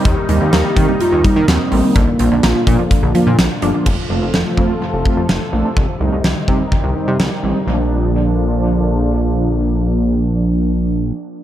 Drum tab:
CC |--------|--------|x-------|--------|
HH |xxxxxxxo|xxxxxxxx|--------|--------|
SD |--o---o-|--o---o-|--o---o-|--o---o-|
BD |o--o-o--|o--oo---|o--o-o--|o--oo---|

CC |--------|--------|
HH |--------|--------|
SD |--------|--------|
BD |--------|--------|